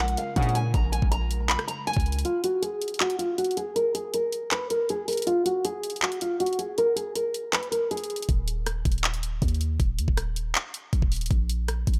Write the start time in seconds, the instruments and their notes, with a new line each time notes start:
Already playing: 808-style bass A#1, synth keys C#3 G#3 F4 A#4
0.00 nylon-string guitar F#5
0.08 closed hi-hat
0.17 nylon-string guitar F5, closed hi-hat
0.36 brass ensemble A#1 G#2 C#3, 808-style bass A#2, nylon-string guitar F#5, kick, closed hi-hat
0.43 closed hi-hat
0.49 closed hi-hat
0.55 nylon-string guitar G#5, closed hi-hat
0.74 808-style bass A#1, nylon-string guitar A#5, kick, closed hi-hat
0.92 nylon-string guitar G#5, closed hi-hat
1.02 808-style bass A#1, kick
1.12 nylon-string guitar A#5, closed hi-hat
1.31 closed hi-hat
1.49 nylon-string guitar B5, clap, closed hi-hat
1.59 cross-stick, closed hi-hat
1.68 nylon-string guitar A#5, closed hi-hat
1.87 nylon-string guitar G#5, closed hi-hat
1.93 808-style bass C#2, kick, closed hi-hat
2.00 closed hi-hat
2.06 closed hi-hat
2.12 closed hi-hat
2.19 closed hi-hat
2.25 nylon-string guitar F4, closed hi-hat
2.44 nylon-string guitar F#4, closed hi-hat
2.62 nylon-string guitar G#4, closed hi-hat
2.82 closed hi-hat
2.88 closed hi-hat
2.94 closed hi-hat
3.00 nylon-string guitar F#4, clap, closed hi-hat
3.10 closed hi-hat
3.19 nylon-string guitar F4, closed hi-hat
3.38 nylon-string guitar F#4, closed hi-hat
3.44 closed hi-hat
3.51 closed hi-hat
3.57 nylon-string guitar G#4, closed hi-hat
3.76 nylon-string guitar A#4, closed hi-hat
3.95 nylon-string guitar G#4, closed hi-hat
4.14 nylon-string guitar A#4, closed hi-hat
4.33 closed hi-hat
4.51 nylon-string guitar B4, clap, closed hi-hat
4.70 nylon-string guitar A#4, closed hi-hat
4.89 nylon-string guitar G#4, closed hi-hat
5.08 nylon-string guitar A#4, closed hi-hat, open hi-hat
5.13 closed hi-hat
5.17 closed hi-hat
5.22 closed hi-hat
5.27 nylon-string guitar F4, closed hi-hat
5.45 nylon-string guitar F#4, closed hi-hat
5.65 nylon-string guitar G#4, closed hi-hat
5.83 closed hi-hat
5.90 closed hi-hat
5.96 closed hi-hat
6.02 nylon-string guitar F#4, clap, closed hi-hat
6.12 closed hi-hat
6.21 nylon-string guitar F4, closed hi-hat
6.40 nylon-string guitar F#4, closed hi-hat
6.46 closed hi-hat
6.53 closed hi-hat
6.59 nylon-string guitar G#4, closed hi-hat
6.78 nylon-string guitar A#4, closed hi-hat
6.96 nylon-string guitar G#4, closed hi-hat
7.15 nylon-string guitar A#4, closed hi-hat
7.34 closed hi-hat
7.53 nylon-string guitar B4, clap, closed hi-hat
7.63 closed hi-hat
7.72 nylon-string guitar A#4, closed hi-hat
7.91 nylon-string guitar G#4, closed hi-hat
7.97 closed hi-hat
8.04 closed hi-hat
8.10 closed hi-hat
8.16 closed hi-hat
8.22 closed hi-hat
8.29 808-style bass D#1, kick, closed hi-hat
8.48 closed hi-hat
8.66 cross-stick, closed hi-hat
8.85 808-style bass D#1, kick, closed hi-hat
8.92 closed hi-hat
8.98 closed hi-hat
9.04 clap, closed hi-hat
9.14 closed hi-hat
9.23 closed hi-hat
9.42 808-style bass D#2, kick, closed hi-hat
9.48 closed hi-hat
9.54 closed hi-hat
9.61 closed hi-hat
9.80 808-style bass D#1, kick, closed hi-hat
9.98 808-style bass D#2, closed hi-hat
10.08 808-style bass D#1, kick
10.17 cross-stick, closed hi-hat
10.36 closed hi-hat
10.55 clap, closed hi-hat
10.74 closed hi-hat
10.93 808-style bass A#1, kick, closed hi-hat
11.02 808-style bass D#1, kick
11.12 closed hi-hat, open hi-hat
11.16 closed hi-hat
11.21 closed hi-hat
11.26 closed hi-hat
11.31 808-style bass A#1, kick
11.49 closed hi-hat
11.68 cross-stick, closed hi-hat
11.87 808-style bass A#1, kick, closed hi-hat
11.94 closed hi-hat